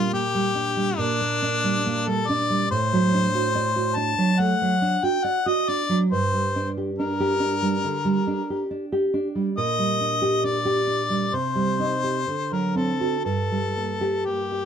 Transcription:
0.00 0.94 A#2 medium
0.00 0.26 G3 soft
0.00 0.11 F4 medium
0.13 0.47 A#3 soft
0.13 1.00 G4 medium
0.35 0.68 G3 soft
0.55 0.89 D4 soft
0.77 1.11 G3 soft
0.98 2.68 A#2 medium
0.98 2.10 D4 medium
1.21 1.56 A#3 soft
1.42 1.77 D4 medium
1.64 1.99 G3 soft
1.86 2.20 A#3 soft
2.07 2.42 G3 soft
2.07 2.29 A4 medium
2.28 2.63 D4 soft
2.28 2.71 D5 medium
2.50 2.72 G3 soft
2.71 4.18 A2 medium
2.71 3.98 C5 medium
2.93 3.26 F#3 soft
3.14 3.47 D4 soft
3.35 3.68 F#4 medium
3.55 3.89 D5 soft
3.76 4.10 F#4 soft
3.96 4.31 D4 soft
3.96 4.41 A5 medium
4.18 4.53 F#3 soft
4.39 4.74 A3 soft
4.39 5.06 F#5 medium
4.62 4.96 F#3 soft
4.82 5.16 D4 soft
5.03 5.38 F#4 soft
5.03 5.26 G5 medium
5.24 5.59 D5 medium
5.24 5.49 F#5 medium
5.46 5.81 F#4 soft
5.46 5.71 D#5 medium
5.68 6.03 D4 soft
5.68 5.99 D5 medium
5.89 6.11 F#3 soft
6.11 7.79 G2 medium
6.11 6.70 C5 medium
6.34 6.68 G3 soft
6.56 6.90 D4 soft
6.77 7.11 G4 soft
6.99 7.33 D4 soft
6.99 8.67 A#4 medium
7.20 7.54 G4 soft
7.40 7.74 D4 soft
7.62 7.96 G3 soft
7.84 8.18 D3 soft
8.05 8.40 G3 soft
8.27 8.62 D4 soft
8.50 8.84 G4 soft
8.71 9.05 D4 soft
8.92 9.27 G4 soft
9.14 9.48 D4 soft
9.35 9.57 G3 soft
9.57 11.30 A#2 medium
9.57 10.46 D#5 medium
9.79 10.14 G3 soft
10.01 10.35 D4 soft
10.22 10.57 G4 soft
10.44 10.79 D4 soft
10.44 11.36 D5 medium
10.65 11.02 G4 soft
10.87 11.24 D4 soft
11.10 11.33 G3 soft
11.33 12.24 C3 soft
11.33 12.54 C5 medium
11.55 11.94 G3 soft
11.80 12.18 D#4 soft
12.03 12.27 G4 soft
12.27 13.23 D3 soft
12.52 12.91 F#3 soft
12.52 12.77 A#4 soft
12.75 13.15 C4 soft
12.75 13.24 A4 soft
13.00 13.26 F#4 soft
13.25 14.65 G2 soft
13.25 14.27 A4 medium
13.51 13.91 G3 soft
13.77 14.16 A#3 soft
14.01 14.41 G4 soft
14.25 14.65 A#3 soft
14.25 14.65 G4 soft
14.52 14.65 G4 soft

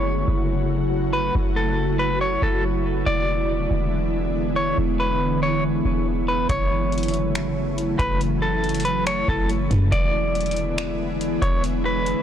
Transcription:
0.00 0.25 F#1 loud
0.00 3.03 C#3 medium
0.00 3.03 F#3 medium
0.00 3.03 A3 medium
0.00 9.88 E4 medium
0.00 3.03 F#4 medium
0.00 1.10 C#5 loud
0.28 1.31 F#1 loud
1.13 1.34 B4 medium
1.35 2.38 F#1 loud
1.56 1.97 A4 medium
1.99 2.20 B4 medium
2.21 2.41 C#5 medium
2.42 3.04 F#1 loud
2.42 2.63 A4 medium
3.06 3.68 E1 loud
3.06 6.46 D3 medium
3.06 12.23 E3 medium
3.06 6.46 G#3 medium
3.06 6.46 B3 medium
3.06 4.53 D5 medium
3.71 4.74 E1 loud
4.56 4.77 C#5 medium
4.78 5.81 E1 loud
5.00 5.40 B4 medium
5.43 5.63 C#5 medium
5.85 6.47 E1 loud
6.28 6.49 B4 medium
6.49 7.96 F#1 loud
6.49 9.89 C#3 medium
6.49 9.89 F#3 medium
6.49 9.89 A3 medium
6.49 7.96 C#5 medium
6.49 kick loud
6.49 closed hi-hat medium
6.92 closed hi-hat soft
6.98 closed hi-hat medium
7.03 closed hi-hat medium
7.08 closed hi-hat medium
7.14 closed hi-hat medium
7.35 finger snap loud
7.35 closed hi-hat medium
7.78 closed hi-hat medium
7.99 9.24 F#1 loud
7.99 8.20 B4 medium
7.99 kick medium
7.99 closed hi-hat medium
8.21 closed hi-hat medium
8.42 8.82 A4 medium
8.64 closed hi-hat soft
8.69 closed hi-hat medium
8.74 closed hi-hat medium
8.80 closed hi-hat medium
8.85 9.05 B4 medium
8.85 closed hi-hat medium
9.07 9.27 C#5 medium
9.07 finger snap loud
9.07 closed hi-hat medium
9.28 9.69 F#1 loud
9.28 9.49 A4 medium
9.28 kick medium
9.49 closed hi-hat medium
9.71 9.91 F#2 loud
9.71 kick medium
9.71 closed hi-hat medium
9.92 11.38 E1 loud
9.92 12.23 D3 medium
9.92 12.23 G#3 medium
9.92 12.23 B3 medium
9.92 12.23 E4 medium
9.92 11.38 D5 medium
9.92 kick loud
9.92 closed hi-hat medium
10.35 closed hi-hat soft
10.41 closed hi-hat medium
10.46 closed hi-hat medium
10.51 closed hi-hat medium
10.56 closed hi-hat medium
10.78 finger snap loud
10.78 closed hi-hat medium
11.21 closed hi-hat medium
11.42 12.14 E1 loud
11.42 11.62 C#5 medium
11.42 kick medium
11.42 closed hi-hat medium
11.64 closed hi-hat medium
11.86 12.23 B4 medium
12.06 closed hi-hat medium

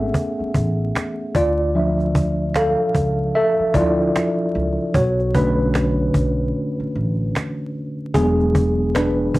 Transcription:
0.00 0.11 A3 medium
0.00 0.11 B3 medium
0.00 0.12 C#4 medium
0.00 1.32 G#4 medium
0.00 1.36 A4 medium
0.00 1.31 E5 medium
0.00 1.36 F#5 medium
0.14 cajon bass medium
0.40 muted upright bass stroke soft
0.54 0.89 A1 medium
0.54 cajon bass medium
0.96 finger snap medium
0.96 cajon slap loud
1.35 2.74 D2 medium
1.35 2.51 F4 medium
1.35 2.59 D5 medium
1.35 cajon bass loud
1.75 2.91 F3 medium
1.75 2.91 D4 soft
1.75 2.91 E5 medium
2.00 cajon slap soft
2.15 cajon bass loud
2.54 3.32 A4 medium
2.54 3.37 F5 medium
2.54 finger snap medium
2.54 cajon slap loud
2.94 3.30 C#2 medium
2.94 cajon bass medium
3.35 3.73 A4 medium
3.35 3.72 E5 loud
3.60 muted upright bass stroke soft
3.74 4.09 D2 medium
3.74 4.11 F3 medium
3.74 4.11 D4 medium
3.74 4.11 E4 medium
3.74 4.91 F4 medium
3.74 4.98 D5 loud
3.74 cajon bass loud
4.16 finger snap medium
4.16 cajon slap loud
4.55 4.76 C#2 medium
4.94 6.11 B1 loud
4.94 5.33 F#4 medium
4.94 5.36 C#5 medium
4.94 cajon bass loud
5.20 cajon slap soft
5.35 6.51 D3 medium
5.35 6.51 A3 medium
5.35 6.51 C#4 medium
5.35 6.91 D4 medium
5.35 6.91 B4 medium
5.35 cajon bass loud
5.74 finger snap medium
5.74 cajon slap loud
6.14 6.49 B1 medium
6.14 cajon bass medium
6.80 muted upright bass stroke medium
6.95 7.30 A1 medium
7.35 finger snap medium
7.35 cajon slap loud
8.14 9.31 E1 loud
8.14 9.39 F#3 soft
8.14 9.39 G#3 soft
8.14 8.92 B3 medium
8.14 8.96 D4 medium
8.14 8.97 G#4 medium
8.14 cajon bass loud
8.40 cajon slap soft
8.55 cajon bass loud
8.95 9.39 D4 medium
8.95 9.39 B4 medium
8.95 finger snap medium
8.95 cajon slap loud
9.35 9.39 F#1 medium
9.35 cajon bass medium

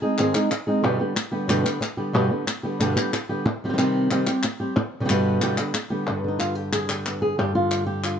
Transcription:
0.02 0.18 G#3 soft
0.02 0.18 C4 soft
0.02 0.18 D#4 soft
0.02 0.17 G#4 medium
0.18 0.34 G#2 medium
0.18 0.34 D#3 medium
0.18 0.34 G#3 medium
0.18 0.34 C4 medium
0.18 0.34 D#4 medium
0.18 0.33 G#4 medium
0.18 clap medium
0.34 0.50 G#3 soft
0.34 0.50 C4 soft
0.34 0.50 D#4 medium
0.34 0.50 G#4 medium
0.34 clap medium
0.51 muted nylon-string guitar stroke medium
0.51 clap medium
0.67 0.83 G#3 soft
0.67 0.83 C4 soft
0.67 0.83 D#4 soft
0.67 0.83 G#4 medium
0.83 0.99 G2 medium
0.83 0.99 B2 medium
0.83 0.99 D3 medium
0.83 0.99 G3 medium
0.83 0.99 B3 medium
0.83 0.98 G4 medium
0.99 1.15 D3 soft
0.99 1.15 G3 soft
0.99 1.15 B3 soft
0.99 1.15 G4 soft
1.15 muted nylon-string guitar stroke medium
1.15 clap medium
1.32 1.48 D3 soft
1.32 1.48 G3 soft
1.32 1.48 B3 medium
1.32 1.48 G4 soft
1.48 1.64 G2 medium
1.48 1.64 B2 medium
1.48 1.65 D3 medium
1.48 1.64 G3 medium
1.48 1.64 B3 medium
1.48 1.63 G4 medium
1.48 clap medium
1.64 1.80 D3 soft
1.64 1.80 G3 soft
1.64 1.81 B3 medium
1.64 1.80 G4 medium
1.64 clap medium
1.81 muted nylon-string guitar stroke medium
1.81 clap medium
1.97 2.13 D3 soft
1.97 2.14 G3 soft
1.97 2.13 B3 soft
1.97 2.13 G4 soft
2.13 2.30 G2 medium
2.13 2.30 B2 medium
2.13 2.30 D3 medium
2.13 2.30 G3 medium
2.13 2.29 B3 medium
2.13 2.29 G4 medium
2.30 2.46 D3 soft
2.30 2.46 G3 soft
2.30 2.46 B3 soft
2.47 muted nylon-string guitar stroke medium
2.47 clap medium
2.63 2.79 D3 soft
2.63 2.80 G3 medium
2.63 2.79 B3 soft
2.63 2.79 G4 medium
2.80 2.95 G2 medium
2.80 2.96 B2 medium
2.80 2.96 D3 medium
2.80 2.96 G3 medium
2.80 2.96 B3 medium
2.80 2.95 G4 medium
2.80 clap medium
2.96 3.12 D3 soft
2.96 3.12 G3 soft
2.96 3.12 B3 medium
2.96 3.12 G4 medium
2.96 clap medium
3.13 muted nylon-string guitar stroke medium
3.13 clap medium
3.29 3.46 D3 soft
3.29 3.45 G3 soft
3.29 3.45 B3 soft
3.29 3.45 G4 medium
3.46 muted nylon-string guitar stroke medium
3.64 3.67 D#3 medium
3.64 3.68 G3 medium
3.64 3.68 C4 medium
3.64 3.69 G4 medium
3.69 3.72 D#3 medium
3.69 3.72 G3 medium
3.69 3.73 C4 medium
3.69 3.73 G4 medium
3.73 3.77 D#3 medium
3.73 3.77 G3 medium
3.73 3.77 C4 medium
3.73 3.77 G4 medium
3.78 4.09 C3 medium
3.78 4.10 D#3 medium
3.78 4.10 G3 medium
3.78 4.10 C4 medium
3.78 4.10 G4 medium
3.78 clap medium
4.10 4.26 C3 medium
4.10 4.27 D#3 medium
4.10 4.27 G3 medium
4.10 4.27 C4 medium
4.10 4.26 G4 medium
4.10 clap medium
4.27 4.43 G3 soft
4.27 4.43 C4 soft
4.27 4.43 G4 medium
4.27 clap medium
4.43 muted nylon-string guitar stroke medium
4.43 clap medium
4.60 4.77 G3 soft
4.60 4.76 C4 soft
4.60 4.76 G4 medium
4.77 muted nylon-string guitar stroke medium
5.00 5.04 B2 soft
5.00 5.04 D3 medium
5.00 5.04 G3 medium
5.00 5.04 B3 medium
5.00 5.05 G4 medium
5.05 5.08 B2 medium
5.05 5.09 D3 medium
5.05 5.09 G3 medium
5.05 5.09 B3 medium
5.05 5.09 G4 medium
5.09 5.40 G2 medium
5.09 5.41 B2 medium
5.09 5.41 D3 medium
5.09 5.42 G3 medium
5.09 5.42 B3 medium
5.09 5.42 G4 medium
5.09 clap medium
5.42 5.57 G2 medium
5.42 5.58 B2 medium
5.42 5.58 D3 medium
5.42 5.58 G3 medium
5.42 5.58 B3 medium
5.42 5.57 G4 medium
5.42 clap medium
5.58 5.73 D3 soft
5.58 5.73 G3 soft
5.58 5.74 B3 medium
5.58 5.74 G4 medium
5.58 clap medium
5.74 muted nylon-string guitar stroke medium
5.74 clap medium
5.90 6.07 D3 soft
5.90 6.07 G3 soft
5.90 6.07 B3 soft
5.90 6.06 G4 soft
6.07 7.38 G2 medium
6.07 6.23 D3 soft
6.07 7.06 B3 soft
6.24 6.88 D3 soft
6.28 6.40 D#4 medium
6.39 6.55 F4 medium
6.39 clap medium
6.55 6.72 G4 medium
6.72 6.90 G#4 medium
6.72 clap medium
6.89 7.54 D3 medium
6.89 7.22 G4 medium
6.89 clap medium
7.06 7.58 B3 soft
7.06 clap medium
7.22 7.38 G#4 medium
7.38 8.20 G2 medium
7.38 7.55 G4 medium
7.55 8.20 D3 medium
7.55 7.86 F4 medium
7.71 clap medium
7.87 8.04 G4 medium
8.04 8.20 F4 medium
8.04 clap medium

